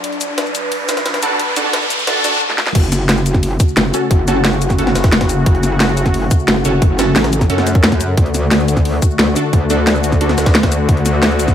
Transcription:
Already playing: F#3 D4 F#4 A4, riser
0.04 B4, closed hi-hat
0.12 closed hi-hat
0.21 closed hi-hat, shaker
0.38 snare, closed hi-hat
0.46 shaker
0.55 closed hi-hat, shaker
0.72 closed hi-hat, open hi-hat
0.89 snare, closed hi-hat, shaker
0.97 snare, closed hi-hat, shaker
1.06 snare, closed hi-hat
1.14 snare, closed hi-hat
1.23 D4 F#4 A4, closed hi-hat, shaker
1.39 closed hi-hat
1.56 D4 F#4 A4, closed hi-hat, shaker
1.73 snare, closed hi-hat
1.82 shaker
1.90 closed hi-hat, shaker
1.99 shaker
2.07 D4 F#4 A4, snare, closed hi-hat
2.24 D4 F#4 A4, closed hi-hat, shaker
2.33 shaker
2.50 snare
2.58 snare
2.67 snare
2.75 F#1 C#3 A3 F#4, kick, closed hi-hat, crash
2.84 closed hi-hat
2.92 snare, closed hi-hat, shaker
3.09 snare, closed hi-hat
3.17 shaker
3.26 closed hi-hat, shaker
3.34 kick, snare, shaker
3.43 closed hi-hat, open hi-hat
3.60 kick, closed hi-hat, shaker
3.68 shaker
3.77 F#1, snare, closed hi-hat
3.94 C#4 F#4 A4, closed hi-hat, shaker
4.11 F#1, kick, closed hi-hat
4.28 C#4 F#4 A4, snare, closed hi-hat, shaker
4.45 snare, closed hi-hat
4.53 shaker
4.62 closed hi-hat, shaker
4.70 kick, snare, shaker
4.79 C#4 F#4 A4, closed hi-hat
4.87 snare
4.95 F#1, snare, closed hi-hat, shaker
5.04 kick, snare, closed hi-hat, shaker
5.12 snare, closed hi-hat
5.21 kick, snare, closed hi-hat
5.29 closed hi-hat, shaker
5.46 F#1, kick, closed hi-hat
5.55 closed hi-hat
5.63 snare, closed hi-hat, shaker
5.80 snare, closed hi-hat
5.89 shaker
5.97 closed hi-hat, shaker
6.06 kick, snare, shaker
6.14 closed hi-hat, open hi-hat
6.31 kick, closed hi-hat, shaker
6.40 shaker
6.48 F#1, snare, closed hi-hat
6.65 F#1 C#4 F#4 A4, closed hi-hat, shaker
6.82 F#1, kick, closed hi-hat
6.99 C#4 F#4 A4, snare, closed hi-hat, shaker
7.16 A1, snare, closed hi-hat
7.24 snare, closed hi-hat, shaker
7.33 closed hi-hat, shaker
7.41 kick, snare, closed hi-hat, shaker
7.50 F#2 C#4 F#4 A4, closed hi-hat
7.58 snare
7.67 snare, closed hi-hat, shaker
7.75 kick, shaker
7.84 snare, closed hi-hat
7.92 kick, snare
8.01 closed hi-hat, shaker
8.17 D2 D3 F#4, kick, closed hi-hat
8.26 closed hi-hat
8.34 snare, closed hi-hat, shaker
8.51 snare, closed hi-hat
8.60 shaker
8.68 closed hi-hat, shaker
8.77 kick, snare, shaker
8.85 closed hi-hat, open hi-hat
9.02 kick, closed hi-hat, shaker
9.11 shaker
9.19 D2, snare, closed hi-hat
9.36 D4 F#4 A4, closed hi-hat, shaker
9.53 D2, kick, closed hi-hat
9.70 D4 F#4 A4, snare, closed hi-hat, shaker
9.87 snare, closed hi-hat
9.95 shaker
10.04 closed hi-hat, shaker
10.12 kick, snare, shaker
10.21 D4 F#4 A4, closed hi-hat
10.29 snare
10.38 D2, snare, closed hi-hat, shaker
10.46 kick, snare, closed hi-hat, shaker
10.55 snare, closed hi-hat
10.63 kick, snare, closed hi-hat
10.72 closed hi-hat, shaker
10.89 D2, kick, closed hi-hat
10.97 closed hi-hat
11.06 snare, closed hi-hat, shaker
11.23 snare, closed hi-hat
11.31 shaker
11.39 closed hi-hat, shaker
11.48 kick, snare, shaker

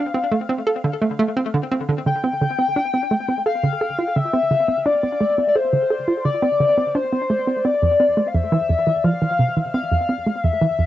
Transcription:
Already playing: F5
0.14 C4
0.32 A3
0.49 C4
0.67 A4
0.84 D3
1.02 A3
1.19 A3
1.37 C4
1.54 D3
1.72 C4
1.89 D3
2.06 D3 G5
2.24 C4
2.41 D3
2.59 C4
2.76 D4
2.94 C4
3.11 A3
3.28 C4
3.46 A4 F5
3.63 D3
3.81 A4
3.98 F4
4.16 D3 E5
4.33 C4
4.51 D3
4.68 C4
4.86 D4 D5
5.03 C4
5.21 A3
5.38 C4
5.48 D5
5.55 A4 C5
5.73 D3
5.90 A4
6.08 F4
6.25 D3 D5
6.42 C4
6.60 D3
6.78 C4
6.95 D4 C5
7.12 C4
7.30 A3
7.47 C4
7.65 C4 D5
7.82 F2
8.00 C4
8.17 A3
8.28 F5
8.34 F2 E5
8.52 E3
8.69 F2
8.87 E3
9.04 F3 F5
9.22 E3
9.39 C3
9.57 E3
9.74 C4 F5
9.92 F2
10.09 C4
10.26 A3
10.44 F2 E5
10.61 E3
10.79 F2

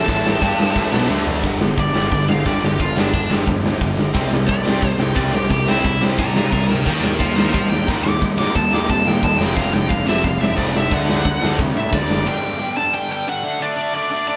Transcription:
Already playing: A5
0.05 A1 A2 E3 A3, kick, crash
0.26 snare
0.40 G2 G3 D4 G4, kick, crash
0.60 snare
0.73 A1 A2 E3 A3, kick, crash
0.91 B1 B2 F#3 B3, snare
1.09 D2 D3 A3 D4, snare
1.27 floor tom
1.43 G1 G2 D3 G3, kick, open hi-hat
1.60 G1 G2 D3, snare
1.76 G1 G2 D3 D5, kick, open hi-hat
1.94 G1 G2 D3 G3, snare
2.11 G1 G2 D3, kick, open hi-hat
2.29 G1 G2 D3 F5, snare
2.45 G1 G2 D3 G3 D5, kick, open hi-hat
2.63 G2 D3 G4, snare
2.79 G1 G2 D3 F4, kick, open hi-hat
2.96 G2 D3 G3 D4, snare
3.13 G1 G2 D3, kick, open hi-hat
3.29 G1 G2 D3 G3, snare
3.46 F2 G2 D3, kick, open hi-hat
3.63 D2 G2 D3, snare
3.80 G1 G2 D3, kick, open hi-hat
3.96 G1 G2 D3, snare
4.13 C2 C3 G3 C4, kick, open hi-hat
4.31 C2 C3 G3, snare
4.47 C2 C3 G3 D5, kick, open hi-hat
4.64 C2 C3 G3 C4, snare
4.81 C2 C3 G3, kick, open hi-hat
4.97 C2 C3 G3 G5, snare
5.15 C2 C3 G3 C4 D5, kick, open hi-hat
5.33 C3 G3 G4, snare
5.49 C2 C3 G3 G4, kick, open hi-hat
5.66 C3 G3 C4 E4, snare
5.83 C2 C3 G3, kick, open hi-hat
6.01 C2 C3 G3 C4, snare
6.18 A2 C3 G3 D5 A#5, kick, open hi-hat
6.34 G2 C3 G3 D5 A#5, snare
6.51 C2 C3 G3 D5 A#5, kick, open hi-hat
6.68 D2 C3 G3 A#4 G5, snare
6.85 D#2 D#3 G3 A#3 D#4 A#4 G5, kick, crash
7.03 D#2 D#3 G3 A#3 A#4 G5, snare
7.19 D#2 D#3 G3 A#3 C5 F5, kick, open hi-hat
7.36 D#2 D#3 G3 A#3 D#4 C5 F5, snare
7.52 D#2 D#3 G3 A#3 C5 F5, kick, open hi-hat
7.69 D#2 D#3 G3 A#3 G5, snare
7.87 D#2 D#3 G3 A#3 D#4, kick, open hi-hat
8.03 D#3 G3 A#3 D6, snare
8.21 D#2 D#3 G3 A#3, kick, open hi-hat
8.37 D#3 G3 A#3 D#4 D6, snare
8.41 A#3
8.55 D#2 D#3 G3 A#3 A5, kick, open hi-hat
8.71 D#2 D#3 G3 A#3 D#4 D6, snare
8.88 C3 D#3 G3 A#3 A5, kick, open hi-hat
9.05 A#2 D#3 G3 A#3 G5, snare
9.21 D#2 D#3 G3 A#3 A5, kick, open hi-hat
9.38 F1 F2 C3 F3 A3 C4 G5, snare
9.53 F1 F2 C3 F3 A3 C4 F5, kick, open hi-hat
9.71 F1 F2 C3 F3 A3 G5
9.76 snare
9.88 F1 F2 C3 F3 A3 F5, kick, open hi-hat
10.06 F1 F2 C3 F3 A3 C4 E5, snare
10.23 F1 F2 C3 F3 A3 F5, kick, open hi-hat
10.40 F1 F2 C3 F3 A3 E5, snare
10.57 F1 F2 C3 F3 A3 C4 D5, kick, open hi-hat
10.74 F2 C3 F3 A3 E5, snare
10.91 D2 D3 A3 D4 F#5, kick, open hi-hat
11.08 D3 A3 D4, snare
11.24 D2 D3 A3, kick, open hi-hat
11.41 D2 D3 A3 D4, snare
11.57 C3 D3 A3, kick, snare
11.74 A2 D3 A3 E5
11.91 D2 D3 A3 D5, kick, snare
12.08 F#1 D3 A3, snare
12.25 G2 D3 G3 G5
12.41 G2 D3 G3
12.58 G2 D3 G3
12.77 G2 D3 G3 A5
12.94 G2 D3 G3 G5
13.10 G2 D3 G3 G5
13.28 G2 D3 G3 F#5
13.44 D3 A3 D4
13.60 D3 A3 D4 D5
13.76 D3 A3 D4
13.94 D3 A3 D4 D5
14.11 D3 A3 D4
14.27 D3 A3 D4 D5

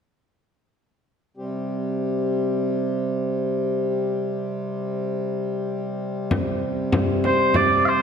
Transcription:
1.37 C3 G3
6.31 C3 G3, frame drum
6.92 frame drum
7.24 C5, frame drum
7.54 D5, frame drum
7.85 C5 F5

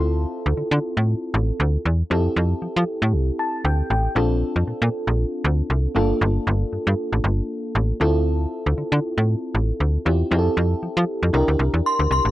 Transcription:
Already playing: D2 C4 E4 F4 A4
0.46 D2
0.57 D3
0.71 D3
0.97 A2
1.34 A1
1.60 D2
1.85 E2
2.10 F2 C4 E4 G4 A4
2.36 F2
2.62 F3
2.76 F3
3.02 A2
3.13 C2
3.39 A5
3.65 D2 G5
3.90 A1 G5
4.15 A#1 C4 D4 F4 A4
4.56 F2
4.67 A#2
4.82 A#2
5.07 A#1
5.44 D2
5.70 C2
5.95 G1 A#3 D4 F4 A4
6.21 G1
6.47 G1
6.73 G2
6.87 G2
7.13 A1
7.24 G1
7.75 A1
8.00 D2 C4 E4 F4 A4
8.66 D2
8.78 D3
8.92 D3
9.18 A2
9.55 A1
9.80 D2
10.05 E2 C4 E4 F4 G4
10.31 F2 C4 E4 G4 G#4
10.39 A4
10.57 F2
10.83 F3
10.97 F3
11.23 F2
11.33 C2 D4 E4 G4 A#4
11.48 D2
11.59 C2
11.74 E2
11.86 C6
11.99 D2
12.11 C2 C6
12.25 A1

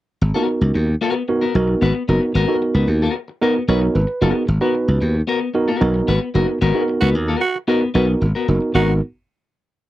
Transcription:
0.21 G#1, muted clean electric guitar stroke
0.34 B3 D#4 F#4 A#4
0.48 muted clean electric guitar stroke
0.61 C#2, muted clean electric guitar stroke
0.74 D#2, muted clean electric guitar stroke
0.87 muted clean electric guitar stroke
1.01 B3 F#4 A#4
1.15 muted clean electric guitar stroke
1.28 B3 D#4 F#4 A#4, muted clean electric guitar stroke
1.41 B3 F#4 A#4
1.54 B1 B3 D#4 F#4 A#4, muted clean electric guitar stroke
1.68 muted clean electric guitar stroke
1.81 G#1 B3 F#4 B4
1.95 muted clean electric guitar stroke
2.08 F#1 B3 D#4 F#4 A#4
2.22 muted clean electric guitar stroke
2.35 G#1 B3 F#4 A#4
2.48 B3 D#4 F#4 A4
2.55 A#4
2.62 muted clean electric guitar stroke
2.75 C#2 B3 F#4 B4
2.88 D#2, muted clean electric guitar stroke
3.02 B3 F#4 A#4
3.15 muted clean electric guitar stroke
3.28 muted clean electric guitar stroke
3.41 B3 D#4 F#4 A#4
3.55 muted clean electric guitar stroke
3.68 B1 B3 D#4 F#4 A#4 B4 C#5
3.82 muted clean electric guitar stroke
3.95 G#1 B4
4.07 muted clean electric guitar stroke
4.21 F#1 B3 D#4 F#4 G#4 A#4
4.34 muted clean electric guitar stroke
4.47 G#1, muted clean electric guitar stroke
4.61 B3 D#4 F#4 A#4 B4
4.75 muted clean electric guitar stroke
4.88 C#2, muted clean electric guitar stroke
5.01 D#2, muted clean electric guitar stroke
5.14 muted clean electric guitar stroke
5.27 B3 F#4 A#4
5.41 muted clean electric guitar stroke
5.54 B3 D#4 F#4 A#4, muted clean electric guitar stroke
5.68 B3 F#4 A#4
5.81 B1 B3 D#4 F#4 A#4, muted clean electric guitar stroke
5.94 muted clean electric guitar stroke
6.07 G#1 B3 F#4 B4
6.21 muted clean electric guitar stroke
6.34 F#1 B3 D#4 F#4 A#4
6.48 muted clean electric guitar stroke
6.61 G#1 B3 F#4 A#4
6.74 B3 D#4 F#4 G#4
6.81 A#4
6.88 muted clean electric guitar stroke
7.01 C#2 B3 F#4 B4
7.15 D#2, muted clean electric guitar stroke
7.28 B3 F#4 A#4
7.41 F#4, muted clean electric guitar stroke
7.55 muted clean electric guitar stroke
7.68 B3 D#4 F#4 A#4
7.81 muted clean electric guitar stroke
7.94 B1 B3 D#4 F#4 A#4 B4
8.07 muted clean electric guitar stroke
8.21 G#1, muted clean electric guitar stroke
8.35 B3 F#4 A#4
8.48 F#1 B3 D#4 F#4 A#4, muted clean electric guitar stroke
8.61 muted clean electric guitar stroke
8.74 G#1 B3 D#4 F#4 A#4

